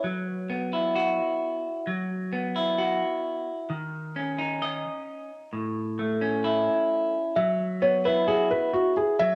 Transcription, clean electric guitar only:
0.04 F#3
0.49 B3
0.73 E4
0.95 F#4
1.87 F#3
2.33 B3
2.56 E4
2.79 F#4
3.70 D#3
4.16 C#4
4.39 D#4
4.62 D#5
5.53 A2
5.99 A3
6.21 C#4
6.44 E4
7.36 F#3
7.82 B3
8.05 E4
8.28 F#4
9.20 F#3

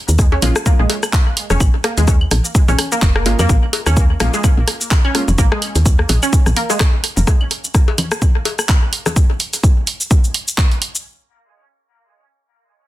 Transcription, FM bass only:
0.08 D#2
0.42 A#1
0.79 A#1
1.50 F1
1.60 A#1
1.97 D#2
2.31 A#1
2.68 A#1
3.02 F1
3.26 G#1
3.39 F2
3.49 A#1
3.86 D#2
4.20 A#1
4.57 A#1
5.28 F1
5.38 A#1
5.75 D#2
6.09 A#1
6.46 A#1
7.17 F1

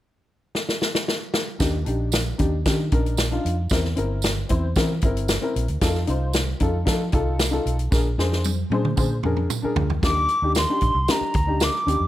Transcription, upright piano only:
1.59 D4 D#4 G4
1.85 D4 D#4 G4
2.38 D4 D#4 G4
2.66 D4 D#4 G4
2.92 D4 D#4 A#4
3.31 D4 D#4 F4
3.71 C4 E4 A#4
3.96 C4 E4 A#4
4.49 C4 E4 C5
4.76 C4 E4 A#4
5.03 C4 E4 A#4
5.41 C4 E4 A#4
5.83 D#4 F4 A4
6.07 D#4 F4 C5
6.60 D#4 F4 A4
6.85 D#4 F4 A4
7.13 D#4 F4 A4
7.51 D#4 F4 A4
7.91 D4 G#4 A#4
8.18 D4 G#4 C5
8.71 D4 G#4 C5
8.96 D4 G#4 C5
9.24 D4 G#4 A#4
9.62 D4 G#4 A#4
10.02 D4 D#4 G4
10.42 D4 D#4 G4
10.69 D4 D#4 G4
11.08 D4 D#4 G4
11.46 D4 D#4 G4
11.86 D4 D#4 G4

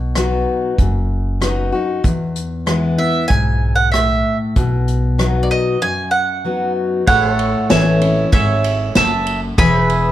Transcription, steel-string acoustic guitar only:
Already playing: B2
0.15 F#3 B3 D#4 F#4
0.79 F#2
1.41 F#3 B3 D#4 F#4
1.72 D#4 F#4
2.04 E2
2.66 E3 G#3 B3 E4
2.98 B3 E4
3.30 G#2
3.94 A2
4.57 B2
5.18 F#3 B3 D#4 F#4
5.82 F#2
6.45 F#3 B3 D#4 F#4
7.08 A2
7.70 E3 A3 C#4 E4
8.02 C#4 E4
8.33 G#2
8.96 F#2
9.58 E2

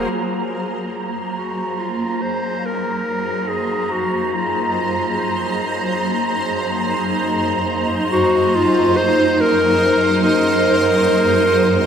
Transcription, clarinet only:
1.38 F#4
1.79 F4
2.22 C5
2.66 A#4
3.49 G#4
3.91 F#4
4.34 F4
8.12 F#4
8.55 F4
8.97 C5
9.40 A#4
10.24 A#4

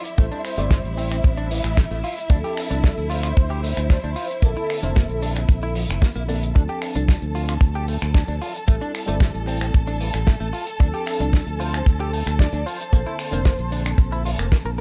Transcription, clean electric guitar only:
0.18 A3
0.32 D4
0.58 A3
0.71 A3
0.97 C4
1.11 C4
1.38 D4
1.51 E3
1.77 A3
1.91 A3
2.04 F4
2.30 D4
2.44 G4
2.71 D4
2.83 D4
3.10 F4
3.24 F4
3.50 G4
3.63 A3
3.90 D4
4.04 D4
4.16 F4
4.43 A#3
4.57 E4
4.83 A#3
4.96 A#3
5.22 D4
5.36 D4
5.63 E4
5.76 F3
6.02 A#3
6.16 A#3
6.29 D4
6.55 D4
6.69 G4
6.96 D4
7.08 D4
7.35 F4
7.49 F4
7.75 G4
7.88 A3
8.15 D4
8.28 D4
8.42 F4
8.68 A3
8.81 D4
9.08 A3
9.21 A3
9.47 C4
9.61 C4
9.87 D4
10.01 E3
10.27 A3
10.40 A3
10.53 F4
10.80 D4
10.94 G4
11.20 D4
11.34 D4
11.60 F4
11.74 F4
12.00 G4
12.13 A3
12.40 D4
12.53 D4
12.66 F4
12.93 A#3
13.07 E4
13.33 A#3
13.46 A#3
13.72 D4
13.86 D4
14.12 E4
14.25 F4
14.39 A#3
14.52 A#3
14.66 A#4

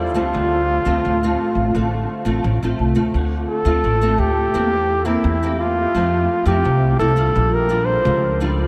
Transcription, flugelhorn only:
Already playing: F4
3.47 A4
4.19 G4
5.06 E4
5.59 F4
6.46 G4
6.99 A4
7.53 A#4
7.85 C5

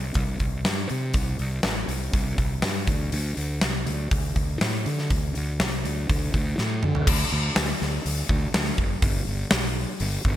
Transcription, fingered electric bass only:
Already playing: C2
0.15 C2
0.40 C2
0.66 G2
0.91 C3
1.14 C2
1.39 C2
1.64 A1
1.88 C2
2.14 C2
2.38 C2
2.63 G2
2.88 D2
3.13 D2
3.37 D2
3.62 C2
3.86 D2
4.11 D2
4.36 D2
4.61 A2
4.86 D3
5.11 D2
5.36 D2
5.60 C2
5.84 D2
6.09 D2
6.34 D2
6.59 A2
6.83 D3
7.07 D2
7.32 D2
7.57 D2
7.82 D2
8.05 D2
8.29 D2
8.54 D2
8.78 F#1
9.02 G1
9.27 G1
9.52 B1
10.00 G1
10.25 G1

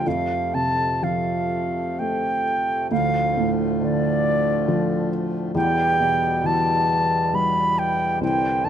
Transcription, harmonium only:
0.05 F2 C3 A3
2.89 D2 A2 F3
5.55 E2 B2 G3
8.20 D3 E3 C4

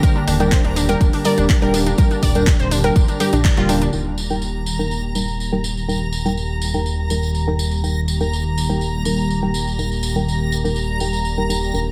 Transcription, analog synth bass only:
0.28 D#1
0.65 D#1
1.01 D#1
1.38 D#1
1.62 D#1
2.23 D#1
2.60 D#1
2.96 D#1
3.33 A#1
3.57 D#1
3.93 D#1
11.74 D#1

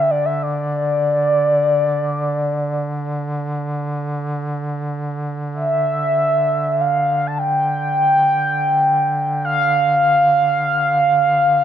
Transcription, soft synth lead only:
Already playing: E5
0.11 D5
0.25 E5
0.43 D5
5.54 E5
6.81 F5
7.27 A5
7.38 G5
9.45 F5

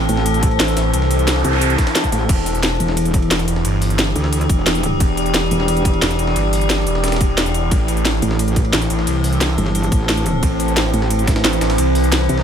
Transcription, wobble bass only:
0.09 A1
1.44 C2
2.12 A1
2.80 E1
4.16 D2
4.49 E1
5.51 E1
8.22 A1
9.58 G1
9.92 A1
10.94 A1
12.29 C2

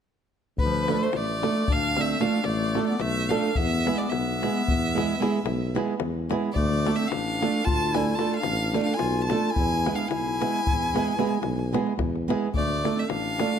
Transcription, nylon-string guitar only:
0.88 A3 D4 F4 A4
1.43 A3 D4 F4 A4
1.96 A3 D4 F4 A4
2.20 A3 D4 F4 A4
2.75 A3 D4 F4 A4
3.29 A3 D4 F4 A4
3.85 G#3 B3 E4 G#4
4.42 G#3 B3 E4 G#4
4.95 G#3 B3 E4 G#4
5.20 G#3 B3 E4 G#4
5.75 G#3 B3 E4 G#4
6.29 G#3 B3 E4 G#4
6.87 A3 D4 F4 A4
7.41 A3 D4 F4 A4
7.94 A3 D4 F4 A4
8.19 A3 D4 F4 A4
8.74 A3 D4 F4 A4
9.30 A3 D4 F4 A4
9.86 G#3 B3 E4 G#4
10.40 G#3 B3 E4 G#4
10.94 G#3 B3 E4 G#4
11.18 G#3 B3 E4 G#4
11.73 G#3 B3 E4 G#4
12.28 G#3 B3 E4 G#4
12.84 A3 D4 F4 A4
13.40 A3 D4 F4 A4

